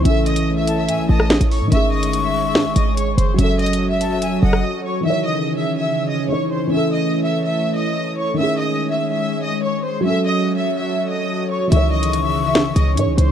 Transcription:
<<
  \new Staff \with { instrumentName = "Flute" } { \time 4/4 \key cis \minor \tempo 4 = 144 r4. a''8 gis''8 a''8 r4 | cis'''1 | r4. a''8 gis''8 fis''8 r4 | r1 |
r1 | r1 | r1 | cis'''1 | }
  \new Staff \with { instrumentName = "Violin section" } { \time 4/4 \key cis \minor <e'' e'''>8 <dis'' dis'''>8. <e'' e'''>8 <e'' e'''>8. <dis'' dis'''>4 <cis'' cis'''>8 | <e'' e'''>8 <dis'' dis'''>8. <e'' e'''>8 <e'' e'''>8. <dis'' dis'''>8 <cis'' cis'''>8 <bis' bis''>8 | <e'' e'''>8 <dis'' dis'''>8. <e'' e'''>8 <e'' e'''>8. <dis'' dis'''>4 <cis'' cis'''>8 | <e'' e'''>8 <dis'' dis'''>8. <e'' e'''>8 <e'' e'''>8. <dis'' dis'''>8 <cis'' cis'''>8 <bis' bis''>8 |
<e'' e'''>8 <dis'' dis'''>8. <e'' e'''>8 <e'' e'''>8. <dis'' dis'''>4 <cis'' cis'''>8 | <e'' e'''>8 <dis'' dis'''>8. <e'' e'''>8 <e'' e'''>8. <dis'' dis'''>8 <cis'' cis'''>8 <bis' bis''>8 | <e'' e'''>8 <dis'' dis'''>8. <e'' e'''>8 <e'' e'''>8. <dis'' dis'''>4 <cis'' cis'''>8 | <e'' e'''>8 <dis'' dis'''>8. <e'' e'''>8 <e'' e'''>8. <dis'' dis'''>8 <cis'' cis'''>8 <bis' bis''>8 | }
  \new Staff \with { instrumentName = "Analog synth pad" } { \time 4/4 \key cis \minor << { cis''1 | cis''1 | a'1 | r1 |
cis''1~ | cis''1 | a'1 | r1 | } \\ { <a e' a'>1 | <gis gis'>1 | <fis fis'>1 | <cis cis' gis'>1 |
<a e' a'>1 | <gis gis'>1 | <fis fis' cis''>1 | <cis cis' gis'>1 | } >> }
  \new Staff \with { instrumentName = "Felt piano" } { \time 4/4 \key cis \minor <e cis' a'>1 | <dis cis' gis'>1 | <fis cis' a'>1 | <dis e cis''>2. <e dis' cis''>4 |
<e cis' a'>1 | <dis cis' gis'>1 | <fis cis' a'>1 | <dis e cis''>2. <e dis' cis''>4 | }
  \new Staff \with { instrumentName = "808-style bass" } { \clef bass \time 4/4 \key cis \minor a,,2 a,16 a,,16 a,,8. a,,8 a,16 | gis,,2 gis,16 gis,,16 gis,,4 fis,,8 | fis,,2~ fis,,8 fis,,8 r4 | r1 |
r1 | r1 | r1 | cis,2~ cis,8 cis,8 gis,16 cis,16 cis,8 | }
  \new DrumStaff \with { instrumentName = "Drums" } \drummode { \time 4/4 hh8 hh16 hh16 r8 hh8 hh8. ss16 sn16 hh16 hho8 | hh8. hh16 hh4 sn8 hh8 hh8 hh8 | \tuplet 3/2 { hh16 r16 r16 hh16 hh16 hh16 } r8 hh8 hh8. ss16 r4 | r4 r4 r4 r4 |
r4 r4 r4 r4 | r4 r4 r4 r4 | r4 r4 r4 r4 | hh8. hh16 hh4 sn8 hh8 hh8 hh8 | }
>>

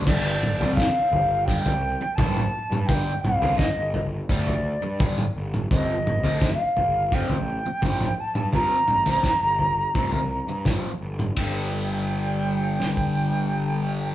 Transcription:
<<
  \new Staff \with { instrumentName = "Flute" } { \time 4/4 \key g \minor \tempo 4 = 85 d''4 f''4 g''4 a''4 | g''8 f''8 ees''8 r8 d''4. r8 | ees''4 f''4 g''4. a''8 | bes''2. r4 |
g''1 | }
  \new Staff \with { instrumentName = "Distorted electric guitar" } { \clef bass \time 4/4 \key g \minor <g, d g>16 r8 <g, d g>16 r4 <g, d g>16 r8. <g, d g>16 r8. | <g, d g>16 r8 <g, d g>16 r4 <g, d g>16 r8. <g, d g>16 r8. | <f, c f>16 r8 <f, c f>16 r4 <f, c f>16 r8. <f, c f>16 r8. | <f, c f>16 r8 <f, c f>16 r4 <f, c f>16 r8. <f, c f>16 r8. |
<g, d g>1 | }
  \new Staff \with { instrumentName = "Picked electric bass" } { \clef bass \time 4/4 \key g \minor g,,8. f,8 r16 g,,8. c,8 r16 bes,,8 r16 g,16~ | g,16 r16 c,8 r16 g,,8. d,8. g,8 r16 g,,8 | g,,8. d,8 r16 g,,8. a,,8 r16 bes,,8 r16 g,16~ | g,16 r16 a,,8 r16 g,,8. c,8. g,8 r16 g,,8 |
g,,1 | }
  \new DrumStaff \with { instrumentName = "Drums" } \drummode { \time 4/4 <cymc bd tomfh>8 toml16 tomfh16 <bd sn>8 tomfh8 bd16 tomfh8. <bd tomfh toml>16 toml8 toml16 | <bd tomfh>8 toml16 tomfh16 <bd sn>8 tomfh8 bd16 tomfh8. <bd tomfh toml>16 toml8 toml16 | <bd tomfh>8 toml16 tomfh16 <bd sn>8 tomfh8 bd16 tomfh8. <bd tomfh toml>16 toml8 toml16 | <bd tomfh>8 toml16 tomfh16 <bd sn>8 tomfh8 bd16 tomfh8. <bd sn tomfh toml>8. toml16 |
<bd cymr>4 r4 sn16 bd8. r4 | }
>>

